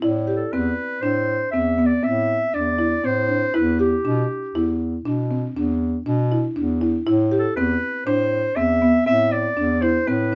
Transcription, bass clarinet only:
0, 0, Header, 1, 2, 480
1, 0, Start_track
1, 0, Key_signature, 0, "minor"
1, 0, Tempo, 502513
1, 23, Time_signature, 7, 2, 24, 8
1, 9886, End_track
2, 0, Start_track
2, 0, Title_t, "Bass clarinet"
2, 0, Program_c, 0, 71
2, 24, Note_on_c, 0, 45, 89
2, 425, Note_off_c, 0, 45, 0
2, 506, Note_on_c, 0, 40, 86
2, 705, Note_off_c, 0, 40, 0
2, 978, Note_on_c, 0, 45, 75
2, 1381, Note_off_c, 0, 45, 0
2, 1451, Note_on_c, 0, 40, 81
2, 1857, Note_off_c, 0, 40, 0
2, 1939, Note_on_c, 0, 45, 81
2, 2342, Note_off_c, 0, 45, 0
2, 2424, Note_on_c, 0, 40, 77
2, 2825, Note_off_c, 0, 40, 0
2, 2903, Note_on_c, 0, 45, 83
2, 3305, Note_off_c, 0, 45, 0
2, 3385, Note_on_c, 0, 40, 93
2, 3786, Note_off_c, 0, 40, 0
2, 3867, Note_on_c, 0, 47, 91
2, 4067, Note_off_c, 0, 47, 0
2, 4347, Note_on_c, 0, 40, 78
2, 4748, Note_off_c, 0, 40, 0
2, 4823, Note_on_c, 0, 47, 80
2, 5225, Note_off_c, 0, 47, 0
2, 5308, Note_on_c, 0, 40, 89
2, 5708, Note_off_c, 0, 40, 0
2, 5789, Note_on_c, 0, 47, 86
2, 6189, Note_off_c, 0, 47, 0
2, 6264, Note_on_c, 0, 40, 86
2, 6666, Note_off_c, 0, 40, 0
2, 6749, Note_on_c, 0, 45, 96
2, 7149, Note_off_c, 0, 45, 0
2, 7227, Note_on_c, 0, 40, 85
2, 7428, Note_off_c, 0, 40, 0
2, 7709, Note_on_c, 0, 45, 72
2, 8109, Note_off_c, 0, 45, 0
2, 8182, Note_on_c, 0, 40, 85
2, 8585, Note_off_c, 0, 40, 0
2, 8664, Note_on_c, 0, 45, 85
2, 9066, Note_off_c, 0, 45, 0
2, 9138, Note_on_c, 0, 40, 84
2, 9542, Note_off_c, 0, 40, 0
2, 9626, Note_on_c, 0, 45, 83
2, 9886, Note_off_c, 0, 45, 0
2, 9886, End_track
0, 0, End_of_file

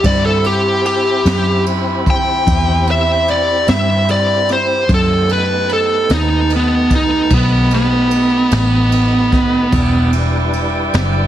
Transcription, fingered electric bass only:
0, 0, Header, 1, 2, 480
1, 0, Start_track
1, 0, Tempo, 806452
1, 27, Time_signature, 12, 3, 24, 8
1, 6709, End_track
2, 0, Start_track
2, 0, Title_t, "Fingered electric bass"
2, 0, Program_c, 0, 33
2, 22, Note_on_c, 0, 43, 88
2, 725, Note_off_c, 0, 43, 0
2, 745, Note_on_c, 0, 42, 83
2, 1446, Note_off_c, 0, 42, 0
2, 1469, Note_on_c, 0, 40, 83
2, 2168, Note_off_c, 0, 40, 0
2, 2192, Note_on_c, 0, 43, 102
2, 2890, Note_off_c, 0, 43, 0
2, 2911, Note_on_c, 0, 42, 91
2, 3609, Note_off_c, 0, 42, 0
2, 3632, Note_on_c, 0, 39, 89
2, 4329, Note_off_c, 0, 39, 0
2, 4347, Note_on_c, 0, 35, 81
2, 5047, Note_off_c, 0, 35, 0
2, 5071, Note_on_c, 0, 33, 98
2, 5768, Note_off_c, 0, 33, 0
2, 5787, Note_on_c, 0, 28, 98
2, 6486, Note_off_c, 0, 28, 0
2, 6512, Note_on_c, 0, 30, 90
2, 6709, Note_off_c, 0, 30, 0
2, 6709, End_track
0, 0, End_of_file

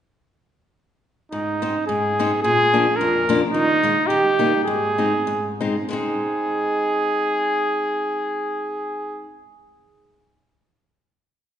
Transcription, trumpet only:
0, 0, Header, 1, 2, 480
1, 0, Start_track
1, 0, Key_signature, -4, "major"
1, 0, Tempo, 557621
1, 1144, Time_signature, 2, 2, 24, 8
1, 3526, Tempo, 592300
1, 4486, Tempo, 657174
1, 6886, Tempo, 672646
1, 9048, End_track
2, 0, Start_track
2, 0, Title_t, "Trumpet"
2, 0, Program_c, 0, 56
2, 1133, Note_on_c, 0, 63, 68
2, 1587, Note_off_c, 0, 63, 0
2, 1605, Note_on_c, 0, 68, 67
2, 2057, Note_off_c, 0, 68, 0
2, 2085, Note_on_c, 0, 68, 89
2, 2550, Note_on_c, 0, 70, 79
2, 2563, Note_off_c, 0, 68, 0
2, 2923, Note_off_c, 0, 70, 0
2, 3027, Note_on_c, 0, 63, 89
2, 3504, Note_on_c, 0, 67, 83
2, 3517, Note_off_c, 0, 63, 0
2, 3962, Note_off_c, 0, 67, 0
2, 3967, Note_on_c, 0, 68, 70
2, 4692, Note_off_c, 0, 68, 0
2, 4952, Note_on_c, 0, 68, 67
2, 7386, Note_off_c, 0, 68, 0
2, 9048, End_track
0, 0, End_of_file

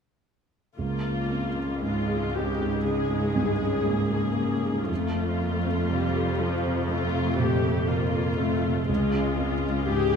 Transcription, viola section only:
0, 0, Header, 1, 2, 480
1, 0, Start_track
1, 0, Tempo, 1048951
1, 360, Time_signature, 4, 2, 24, 8
1, 838, Tempo, 1022147
1, 2278, Tempo, 995025
1, 4817, End_track
2, 0, Start_track
2, 0, Title_t, "Viola section"
2, 0, Program_c, 0, 48
2, 359, Note_on_c, 0, 58, 25
2, 359, Note_on_c, 0, 65, 25
2, 820, Note_off_c, 0, 58, 0
2, 820, Note_off_c, 0, 65, 0
2, 838, Note_on_c, 0, 65, 26
2, 839, Note_on_c, 0, 56, 25
2, 1077, Note_off_c, 0, 65, 0
2, 1082, Note_on_c, 0, 67, 29
2, 1312, Note_off_c, 0, 56, 0
2, 1316, Note_on_c, 0, 68, 31
2, 1318, Note_on_c, 0, 56, 28
2, 1323, Note_off_c, 0, 67, 0
2, 1787, Note_off_c, 0, 56, 0
2, 1798, Note_on_c, 0, 58, 28
2, 2258, Note_off_c, 0, 68, 0
2, 2277, Note_on_c, 0, 57, 29
2, 2277, Note_on_c, 0, 65, 27
2, 2279, Note_off_c, 0, 58, 0
2, 2756, Note_off_c, 0, 57, 0
2, 2761, Note_on_c, 0, 55, 34
2, 3000, Note_off_c, 0, 55, 0
2, 3000, Note_on_c, 0, 53, 35
2, 3230, Note_off_c, 0, 65, 0
2, 3236, Note_on_c, 0, 57, 36
2, 3236, Note_on_c, 0, 65, 35
2, 3237, Note_off_c, 0, 53, 0
2, 3471, Note_off_c, 0, 65, 0
2, 3478, Note_on_c, 0, 67, 35
2, 3718, Note_off_c, 0, 57, 0
2, 3719, Note_off_c, 0, 67, 0
2, 3719, Note_on_c, 0, 58, 34
2, 3720, Note_on_c, 0, 65, 31
2, 3962, Note_off_c, 0, 58, 0
2, 3962, Note_on_c, 0, 57, 36
2, 4201, Note_off_c, 0, 65, 0
2, 4204, Note_off_c, 0, 57, 0
2, 4207, Note_on_c, 0, 56, 35
2, 4207, Note_on_c, 0, 65, 32
2, 4673, Note_off_c, 0, 65, 0
2, 4674, Note_off_c, 0, 56, 0
2, 4679, Note_on_c, 0, 68, 38
2, 4680, Note_on_c, 0, 67, 39
2, 4817, Note_off_c, 0, 67, 0
2, 4817, Note_off_c, 0, 68, 0
2, 4817, End_track
0, 0, End_of_file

